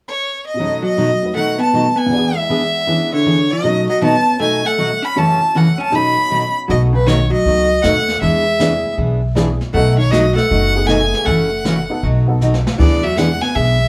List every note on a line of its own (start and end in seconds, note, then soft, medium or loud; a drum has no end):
0.08 0.43 C#5 medium
0.47 0.82 D#5 medium
0.54 2.09 B2 soft
0.54 2.11 F#3 soft
0.59 0.81 B2 medium
0.59 0.81 F#3 medium
0.59 0.82 A3 medium
0.59 2.12 C#4 soft
0.59 0.82 D#4 medium
0.59 1.22 D#4 soft
0.59 0.82 F#4 medium
0.65 2.15 A4 medium
0.82 1.31 F#3 medium
0.82 1.32 D#5 medium
0.97 1.09 B2 medium
0.97 1.09 F#3 medium
0.97 1.09 A3 medium
0.97 1.10 D#4 medium
0.97 1.10 F#4 medium
1.22 2.12 A3 soft
1.22 2.12 D#4 soft
1.22 2.13 F#4 soft
1.22 2.13 B4 soft
1.35 1.58 B2 soft
1.35 1.58 F#3 medium
1.35 1.58 A3 medium
1.35 1.58 A3 soft
1.35 1.58 D#4 medium
1.35 1.58 F#4 medium
1.35 1.59 F#5 medium
1.58 1.95 B3 medium
1.58 1.99 A5 medium
1.73 1.85 B2 medium
1.73 1.85 F#3 medium
1.73 1.86 A3 medium
1.73 1.86 D#4 medium
1.73 1.86 F#4 medium
1.96 2.35 B3 medium
1.96 2.38 G#5 medium
2.06 3.62 E2 medium
2.06 2.85 E3 medium
2.11 2.33 E3 medium
2.11 2.33 B3 medium
2.11 2.34 D4 medium
2.11 3.65 D4 medium
2.11 3.66 F#4 medium
2.11 2.34 G#4 medium
2.18 3.67 G#4 medium
2.35 3.12 G#3 medium
2.35 3.13 E5 medium
2.49 2.61 E3 medium
2.49 2.62 B3 medium
2.49 2.62 D4 medium
2.49 2.62 G#4 medium
2.87 3.64 E3 soft
2.87 3.10 E3 soft
2.87 3.10 B3 medium
2.87 3.63 C#4 soft
2.87 3.10 D4 medium
2.87 3.65 E4 medium
2.87 3.10 G#4 medium
3.13 3.49 D3 medium
3.13 3.53 C#5 medium
3.26 3.38 E3 medium
3.26 3.38 B3 medium
3.26 3.38 D4 medium
3.26 3.38 G#4 medium
3.51 3.89 F#3 medium
3.51 3.88 D#5 medium
3.63 5.16 B2 soft
3.63 3.86 B2 soft
3.63 5.15 F#3 soft
3.63 3.86 F#3 medium
3.63 3.86 A3 medium
3.63 5.17 C#4 soft
3.63 3.87 D#4 medium
3.63 5.17 D#4 soft
3.63 3.87 F#4 medium
3.63 5.15 A4 medium
3.89 4.02 F#3 medium
3.89 4.02 D#5 medium
4.01 4.14 B2 medium
4.01 4.14 F#3 medium
4.01 4.14 A3 medium
4.01 4.38 B3 medium
4.01 4.14 D#4 medium
4.01 4.14 F#4 medium
4.01 4.38 A5 medium
4.39 4.62 B2 soft
4.39 4.62 F#3 medium
4.39 4.63 A3 medium
4.39 4.62 A3 soft
4.39 4.63 D#4 medium
4.39 4.63 F#4 medium
4.39 4.68 G#5 loud
4.65 5.02 A3 medium
4.65 5.06 F#5 medium
4.78 4.90 B2 medium
4.78 4.90 F#3 medium
4.78 4.90 A3 medium
4.78 4.90 D#4 medium
4.78 4.91 F#4 medium
5.02 5.15 C#4 medium
5.02 5.20 B5 medium
5.16 5.93 F#2 medium
5.16 5.39 F#2 soft
5.16 5.39 C#3 medium
5.16 5.39 E3 medium
5.16 5.90 F#3 medium
5.16 5.93 A3 soft
5.16 5.39 A3 medium
5.16 5.55 C#4 medium
5.16 5.39 C#4 medium
5.16 5.93 E4 soft
5.16 5.39 F#4 medium
5.16 5.93 A4 medium
5.16 5.58 A5 medium
5.55 5.67 F#2 medium
5.55 5.67 C#3 medium
5.55 5.67 E3 medium
5.55 5.80 A3 medium
5.55 5.67 A3 medium
5.55 5.67 C#4 medium
5.55 5.67 F#4 medium
5.55 5.81 F#5 medium
5.78 5.92 C#4 medium
5.78 5.96 A5 medium
5.90 6.68 B2 medium
5.90 6.15 B2 soft
5.90 6.69 F#3 medium
5.90 6.15 F#3 medium
5.90 6.15 A3 soft
5.90 6.69 C#4 soft
5.90 6.55 D#4 medium
5.90 6.15 D#4 medium
5.90 6.67 D#4 medium
5.90 6.15 F#4 medium
5.95 6.68 A4 medium
5.95 6.57 B5 loud
6.30 6.42 B2 medium
6.30 6.43 F#3 medium
6.30 6.43 A3 medium
6.30 6.43 D#4 medium
6.30 6.43 F#4 medium
6.68 7.31 B1 medium
6.68 6.91 B2 medium
6.68 6.75 F#3 medium
6.68 6.92 F#3 medium
6.68 6.92 A3 medium
6.68 7.26 B3 medium
6.68 7.27 D#4 medium
6.68 6.92 D#4 medium
6.68 7.27 F#4 medium
6.68 6.92 F#4 medium
6.68 7.27 A4 medium
6.68 6.81 D#5 medium
6.68 brush sweep soft
6.68 kick soft
6.93 7.06 C#3 medium
6.93 7.09 B4 medium
7.06 7.19 B2 medium
7.06 7.31 D#3 medium
7.06 7.19 F#3 medium
7.06 7.19 A3 medium
7.06 7.19 D#4 medium
7.06 7.19 F#4 medium
7.06 7.31 C#5 medium
7.06 snare medium
7.06 hi-hat pedal medium
7.30 7.79 F#3 medium
7.30 7.84 D#5 medium
7.46 7.78 C#2 medium
7.46 7.68 B2 medium
7.46 7.68 F#3 medium
7.46 7.68 A3 medium
7.46 7.68 D#4 medium
7.46 7.68 F#4 medium
7.46 brush sweep soft
7.46 kick soft
7.82 8.16 D#2 medium
7.82 7.95 B2 medium
7.82 7.95 F#3 medium
7.82 8.22 A3 medium
7.82 7.96 A3 medium
7.82 7.96 D#4 medium
7.82 7.96 F#4 medium
7.82 8.21 F#5 loud
7.82 snare medium
7.82 hi-hat pedal medium
8.08 snare soft
8.22 8.83 E2 medium
8.22 8.44 E3 medium
8.22 8.94 G#3 medium
8.22 8.44 B3 medium
8.22 8.44 D4 medium
8.22 8.44 G#4 medium
8.22 8.94 E5 medium
8.22 brush sweep soft
8.22 kick soft
8.59 8.71 E3 medium
8.59 9.17 B3 medium
8.59 8.71 B3 medium
8.59 9.18 D4 medium
8.59 8.72 D4 medium
8.59 9.18 E4 medium
8.59 8.72 G#4 medium
8.59 9.18 G#4 medium
8.59 snare medium
8.59 hi-hat pedal medium
8.97 9.59 B1 medium
8.97 9.20 E3 soft
8.97 9.20 B3 soft
8.97 9.20 D4 medium
8.97 9.20 G#4 medium
8.97 brush sweep soft
8.97 kick soft
9.35 9.47 E3 medium
9.35 9.58 B3 medium
9.35 9.47 B3 medium
9.35 9.58 D4 medium
9.35 9.48 D4 medium
9.35 9.58 E4 medium
9.35 9.48 G#4 medium
9.35 9.58 G#4 medium
9.35 snare medium
9.35 hi-hat pedal medium
9.61 snare soft
9.74 10.35 B1 medium
9.74 9.96 B2 medium
9.74 9.96 F#3 medium
9.74 9.97 A3 medium
9.74 9.96 A3 medium
9.74 9.96 B3 medium
9.74 9.97 D#4 medium
9.74 9.97 F#4 medium
9.74 9.97 A4 medium
9.74 9.97 F#5 medium
9.74 brush sweep soft
9.74 kick soft
9.97 10.12 D#3 medium
9.97 10.13 C#5 medium
10.11 10.24 B2 medium
10.11 10.37 F#3 medium
10.11 10.24 F#3 medium
10.11 10.24 A3 medium
10.11 10.24 D#4 medium
10.11 10.24 F#4 medium
10.11 10.35 D#5 medium
10.11 snare medium
10.11 hi-hat pedal medium
10.35 10.84 A3 medium
10.35 10.88 F#5 loud
10.35 snare soft
10.50 11.12 F#1 medium
10.50 10.72 B2 medium
10.50 10.72 F#3 medium
10.50 10.73 A3 medium
10.50 10.73 D#4 medium
10.50 10.73 F#4 medium
10.50 brush sweep soft
10.50 kick soft
10.75 11.24 B3 medium
10.75 11.24 D#4 medium
10.75 11.24 F#4 medium
10.75 11.25 G#4 medium
10.86 11.00 B2 medium
10.86 11.00 F#3 medium
10.86 11.24 A3 medium
10.86 11.00 A3 medium
10.86 11.00 D#4 medium
10.86 11.00 F#4 medium
10.86 11.27 G#5 medium
10.86 snare medium
10.86 hi-hat pedal medium
11.13 snare soft
11.25 11.88 F#1 medium
11.25 11.49 C#3 medium
11.25 11.49 E3 medium
11.25 12.02 A3 medium
11.25 11.49 A3 medium
11.25 11.49 C#4 medium
11.25 11.49 F#4 medium
11.25 12.02 F#5 medium
11.25 brush sweep soft
11.25 kick soft
11.64 11.76 C#3 medium
11.64 11.76 E3 medium
11.64 11.77 A3 medium
11.64 11.77 C#4 medium
11.64 11.77 F#4 medium
11.64 snare medium
11.64 hi-hat pedal medium
11.89 12.01 B3 medium
11.89 12.02 D#4 medium
11.89 12.02 F#4 medium
11.89 12.03 A4 medium
12.03 12.64 B1 medium
12.03 12.25 B2 soft
12.03 12.25 F#3 medium
12.03 12.25 A3 medium
12.03 12.26 D#4 medium
12.03 12.26 F#4 medium
12.03 brush sweep soft
12.03 kick soft
12.26 12.76 B3 medium
12.26 12.76 D#4 medium
12.26 12.77 F#4 medium
12.26 12.77 A4 medium
12.41 12.53 B2 medium
12.41 12.53 F#3 medium
12.41 12.53 A3 medium
12.41 12.53 D#4 medium
12.41 12.53 F#4 medium
12.41 hi-hat pedal medium
12.54 snare medium
12.67 snare medium
12.78 13.40 E2 medium
12.78 13.04 E3 medium
12.78 13.01 E3 medium
12.78 13.01 B3 medium
12.78 13.02 B3 medium
12.78 13.01 D4 medium
12.78 13.02 D4 medium
12.78 13.02 E4 medium
12.78 13.02 G#4 medium
12.78 13.05 D5 medium
12.78 brush sweep soft
12.78 kick medium
12.78 crash medium
13.03 13.16 F#3 medium
13.03 13.19 E5 medium
13.16 13.29 E3 medium
13.16 13.41 G#3 medium
13.16 13.39 B3 medium
13.16 13.29 B3 medium
13.16 13.40 D4 medium
13.16 13.30 D4 medium
13.16 13.40 E4 medium
13.16 13.30 G#4 medium
13.16 13.41 B4 medium
13.16 13.43 F#5 medium
13.16 snare medium
13.16 hi-hat pedal medium
13.41 13.55 B3 medium
13.41 13.56 G#5 loud
13.41 snare soft
13.55 13.88 B1 medium
13.55 13.77 E3 soft
13.55 13.88 G#3 medium
13.55 13.77 B3 medium
13.55 13.78 D4 medium
13.55 13.78 G#4 medium
13.55 13.88 E5 loud
13.55 kick soft